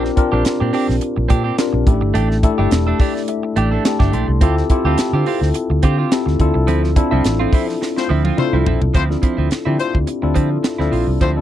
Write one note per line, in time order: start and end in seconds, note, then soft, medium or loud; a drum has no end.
0.00 0.10 C4 medium
0.00 0.16 C4 medium
0.00 0.17 D4 medium
0.00 0.17 F4 medium
0.00 0.18 G4 medium
0.00 0.18 A#4 loud
0.04 muted clean electric guitar stroke medium
0.04 snare soft
0.16 0.26 C4 medium
0.16 0.27 D4 medium
0.16 0.27 F4 medium
0.16 0.27 G4 medium
0.16 0.27 A#4 loud
0.16 muted clean electric guitar stroke soft
0.16 kick medium
0.16 closed hi-hat medium
0.32 0.42 A#1 medium
0.32 1.02 C4 medium
0.32 0.44 C4 medium
0.32 1.02 D4 medium
0.32 0.44 D4 medium
0.32 1.02 F4 medium
0.32 0.45 G4 medium
0.32 1.02 G4 medium
0.32 1.02 A#4 medium
0.45 muted clean electric guitar stroke soft
0.45 snare loud
0.45 closed hi-hat medium
0.60 0.70 A#2 medium
0.60 0.72 C4 medium
0.60 0.72 D4 soft
0.60 0.73 G4 medium
0.73 0.95 C4 medium
0.73 0.89 D4 medium
0.73 0.87 G4 medium
0.73 open hi-hat medium
0.89 0.98 A#1 medium
0.89 muted clean electric guitar stroke soft
0.89 snare soft
1.01 muted clean electric guitar stroke soft
1.01 closed hi-hat medium
1.16 1.26 A#1 medium
1.16 muted clean electric guitar stroke soft
1.28 1.50 A#2 loud
1.28 1.44 C4 medium
1.28 1.43 D4 medium
1.28 1.43 G4 medium
1.28 kick medium
1.28 closed hi-hat medium
1.44 1.56 C4 medium
1.44 1.57 D4 medium
1.44 1.57 G4 medium
1.57 1.87 C4 medium
1.57 1.87 D4 medium
1.57 1.87 F4 medium
1.57 1.86 G4 medium
1.57 1.88 A#4 medium
1.57 muted clean electric guitar stroke soft
1.57 snare loud
1.57 closed hi-hat medium
1.73 1.83 A#1 medium
1.73 muted clean electric guitar stroke soft
1.87 2.01 A1 medium
1.87 2.33 A3 medium
1.87 1.94 C#4 medium
1.87 2.33 E4 medium
1.87 2.33 G4 medium
1.87 2.33 A4 medium
1.87 kick loud
1.87 closed hi-hat medium
1.93 2.36 D4 medium
2.01 2.11 G1 medium
2.01 muted clean electric guitar stroke medium
2.14 2.46 A1 loud
2.14 2.36 A3 medium
2.14 2.30 D4 medium
2.14 2.29 G4 medium
2.14 closed hi-hat medium
2.30 muted clean electric guitar stroke soft
2.30 snare soft
2.43 2.53 A3 medium
2.43 2.53 D4 medium
2.43 2.53 E4 medium
2.43 2.53 G4 medium
2.43 2.53 A4 loud
2.43 muted clean electric guitar stroke soft
2.43 kick medium
2.43 closed hi-hat medium
2.58 2.68 G1 medium
2.58 3.28 A3 medium
2.58 2.70 A3 medium
2.58 3.28 D4 medium
2.58 2.71 D4 medium
2.58 3.28 E4 medium
2.58 2.71 G4 medium
2.58 3.28 G4 medium
2.58 3.29 A4 medium
2.71 2.92 E1 medium
2.71 muted clean electric guitar stroke soft
2.71 snare loud
2.71 closed hi-hat medium
2.87 2.98 A3 soft
2.87 2.99 D4 medium
2.87 3.01 A4 medium
3.00 3.21 A3 medium
3.00 3.15 D4 medium
3.00 3.14 G4 medium
3.00 3.27 D5 medium
3.00 kick loud
3.00 open hi-hat medium
3.15 muted clean electric guitar stroke medium
3.15 snare soft
3.28 3.55 E5 medium
3.28 muted clean electric guitar stroke soft
3.28 closed hi-hat loud
3.43 muted clean electric guitar stroke soft
3.56 3.77 A1 medium
3.56 3.72 A3 medium
3.56 3.71 D4 medium
3.56 3.71 G4 medium
3.56 3.83 G5 medium
3.56 closed hi-hat medium
3.71 3.84 A3 medium
3.71 3.84 D4 medium
3.71 3.86 A4 medium
3.84 4.20 A3 medium
3.84 4.21 D4 medium
3.84 4.21 E4 medium
3.84 4.21 G4 medium
3.84 4.21 A4 medium
3.84 4.11 A5 medium
3.84 muted clean electric guitar stroke soft
3.84 snare loud
3.84 closed hi-hat medium
3.99 4.09 G1 medium
3.99 4.11 A3 medium
3.99 4.12 D4 medium
3.99 4.13 G4 medium
3.99 kick loud
3.99 snare soft
4.12 4.24 A#1 medium
4.12 4.30 A3 medium
4.12 4.28 D4 medium
4.12 4.27 G4 medium
4.12 4.40 C6 medium
4.12 closed hi-hat medium
4.28 4.41 C2 medium
4.28 muted clean electric guitar stroke soft
4.41 4.61 D2 loud
4.41 4.63 C4 medium
4.41 4.60 C4 medium
4.41 4.60 E4 medium
4.41 4.56 F4 medium
4.41 4.60 F4 medium
4.41 4.60 G4 medium
4.41 4.56 G4 medium
4.41 4.60 A4 loud
4.41 kick loud
4.41 closed hi-hat medium
4.57 muted clean electric guitar stroke soft
4.57 snare soft
4.70 4.79 C4 loud
4.70 4.79 E4 medium
4.70 4.80 F4 medium
4.70 4.80 G4 medium
4.70 4.80 A4 loud
4.70 muted clean electric guitar stroke soft
4.70 kick medium
4.70 closed hi-hat medium
4.85 4.94 D2 loud
4.85 5.55 C4 medium
4.85 4.98 C4 medium
4.85 5.55 E4 medium
4.85 5.55 F4 medium
4.85 4.98 F4 medium
4.85 4.99 G4 medium
4.85 5.55 G4 medium
4.85 5.55 A4 medium
4.98 muted clean electric guitar stroke soft
4.98 snare loud
4.98 closed hi-hat medium
5.13 5.22 D3 medium
5.13 5.25 C4 medium
5.13 5.26 F4 medium
5.13 5.27 G4 medium
5.26 5.48 C4 medium
5.26 5.42 F4 medium
5.26 5.40 G4 medium
5.26 open hi-hat medium
5.41 5.51 D2 medium
5.41 muted clean electric guitar stroke soft
5.41 snare soft
5.54 muted clean electric guitar stroke soft
5.54 closed hi-hat loud
5.70 5.79 D2 medium
5.70 muted clean electric guitar stroke soft
5.83 6.03 D3 loud
5.83 5.98 C4 medium
5.83 5.97 F4 medium
5.83 5.97 G4 loud
5.83 kick medium
5.83 closed hi-hat medium
5.98 6.10 C4 medium
5.98 6.11 F4 medium
5.98 6.11 G4 medium
6.11 6.38 C4 medium
6.11 6.39 E4 medium
6.11 6.39 F4 medium
6.11 6.40 G4 medium
6.11 6.40 A4 medium
6.11 muted clean electric guitar stroke soft
6.11 snare loud
6.11 closed hi-hat loud
6.26 6.36 D2 medium
6.26 muted clean electric guitar stroke soft
6.26 snare soft
6.39 6.50 D2 medium
6.39 6.86 C4 medium
6.39 6.86 D4 medium
6.39 6.86 E4 medium
6.39 6.86 F4 medium
6.39 6.86 A4 loud
6.39 kick loud
6.39 closed hi-hat medium
6.54 6.69 C2 medium
6.54 muted clean electric guitar stroke medium
6.67 6.99 D2 loud
6.67 6.89 F3 medium
6.67 6.83 C4 medium
6.67 6.82 E4 medium
6.67 closed hi-hat medium
6.83 muted clean electric guitar stroke soft
6.83 snare soft
6.96 7.06 C4 medium
6.96 7.06 D4 medium
6.96 7.06 E4 medium
6.96 7.06 F4 medium
6.96 7.06 A4 medium
6.96 muted clean electric guitar stroke soft
6.96 kick loud
6.96 closed hi-hat medium
7.10 7.21 C2 medium
7.10 7.24 F3 medium
7.10 7.80 C4 medium
7.10 7.24 C4 medium
7.10 7.80 D4 medium
7.10 7.81 E4 medium
7.10 7.25 E4 medium
7.10 7.81 F4 medium
7.10 7.81 A4 medium
7.24 7.45 A1 medium
7.24 snare medium
7.24 closed hi-hat medium
7.39 7.51 F3 soft
7.39 7.52 C4 medium
7.39 7.54 F4 medium
7.52 7.74 F3 medium
7.52 7.68 C4 medium
7.52 7.67 E4 medium
7.52 kick medium
7.52 open hi-hat medium
7.68 muted clean electric guitar stroke soft
7.68 snare soft
7.81 muted clean electric guitar stroke soft
7.81 snare medium
7.96 8.07 A3 medium
7.96 8.08 C4 medium
7.96 8.07 F4 medium
7.96 8.08 C5 medium
7.96 muted clean electric guitar stroke soft
7.96 snare medium
8.09 8.30 D2 medium
8.09 8.25 F3 medium
8.09 8.24 C4 medium
8.09 8.24 E4 medium
8.25 8.37 F3 medium
8.25 8.38 C4 medium
8.25 8.39 F4 medium
8.25 high tom medium
8.37 8.56 A3 medium
8.37 8.73 C4 medium
8.37 8.56 C4 medium
8.37 8.73 D4 medium
8.37 8.74 E4 medium
8.37 8.56 F4 medium
8.37 8.74 F4 medium
8.37 8.74 A4 medium
8.37 8.56 C5 medium
8.37 muted clean electric guitar stroke soft
8.37 mid tom medium
8.53 8.62 C2 medium
8.53 8.65 F3 medium
8.53 8.65 C4 medium
8.53 8.66 E4 medium
8.66 8.77 A#1 medium
8.66 8.83 F3 medium
8.66 8.81 C4 medium
8.66 8.80 E4 medium
8.66 floor tom medium
8.81 8.91 C2 medium
8.81 muted clean electric guitar stroke soft
8.81 floor tom medium
8.94 9.15 D2 loud
8.94 9.16 F3 medium
8.94 9.04 A3 medium
8.94 9.04 C4 loud
8.94 9.09 C4 medium
8.94 9.08 E4 medium
8.94 9.04 F4 medium
8.94 9.04 C5 loud
8.94 kick medium
8.94 closed hi-hat medium
9.09 9.45 C4 medium
9.09 9.44 D4 medium
9.09 9.45 E4 medium
9.09 9.45 F4 medium
9.09 9.45 A4 medium
9.09 muted clean electric guitar stroke soft
9.09 snare soft
9.22 9.38 F3 medium
9.22 9.37 C4 medium
9.22 9.36 E4 medium
9.22 kick medium
9.22 closed hi-hat medium
9.37 9.47 D2 medium
9.37 9.49 F3 medium
9.37 9.50 C4 medium
9.37 9.50 E4 medium
9.51 snare medium
9.51 closed hi-hat medium
9.65 9.76 D3 medium
9.65 9.77 F3 medium
9.65 10.01 C4 medium
9.65 9.78 C4 medium
9.65 10.01 D4 medium
9.65 9.78 E4 medium
9.65 10.01 E4 medium
9.65 10.02 F4 medium
9.65 10.02 G4 medium
9.78 9.97 A3 medium
9.78 9.97 C4 medium
9.78 9.97 F4 medium
9.78 9.97 C5 loud
9.78 muted clean electric guitar stroke soft
9.78 closed hi-hat medium
9.94 10.04 D2 medium
9.94 muted clean electric guitar stroke soft
9.94 kick medium
10.07 muted clean electric guitar stroke soft
10.07 closed hi-hat medium
10.22 10.32 D2 medium
10.22 10.58 C4 medium
10.22 10.58 D4 medium
10.22 10.58 E4 medium
10.22 10.58 F4 medium
10.22 10.58 A4 loud
10.22 muted clean electric guitar stroke medium
10.35 10.56 D3 medium
10.35 10.57 F3 medium
10.35 10.50 C4 medium
10.35 10.49 E4 medium
10.35 kick medium
10.35 closed hi-hat medium
10.51 muted clean electric guitar stroke soft
10.63 muted clean electric guitar stroke soft
10.63 snare loud
10.63 closed hi-hat medium
10.78 10.89 D2 medium
10.78 10.90 F3 medium
10.78 10.91 C4 medium
10.78 11.15 C4 medium
10.78 11.15 D4 medium
10.78 10.92 E4 medium
10.78 11.15 E4 medium
10.78 11.15 F4 medium
10.78 11.15 A4 medium
10.78 snare soft
10.91 11.03 A#1 medium
10.91 11.10 F3 medium
10.91 11.07 C4 medium
10.91 11.07 F4 medium
10.91 open hi-hat medium
11.07 11.17 C2 medium
11.07 muted clean electric guitar stroke soft
11.21 11.41 D2 loud
11.21 11.41 F3 medium
11.21 11.31 A3 medium
11.21 11.31 C4 medium
11.21 11.36 C4 medium
11.21 11.35 E4 medium
11.21 11.31 F4 medium
11.21 11.31 C5 loud
11.21 kick loud
11.21 closed hi-hat medium
11.36 11.41 C4 medium
11.36 11.41 D4 medium
11.36 11.41 E4 medium
11.36 11.41 F4 medium
11.36 11.41 A4 medium
11.36 muted clean electric guitar stroke soft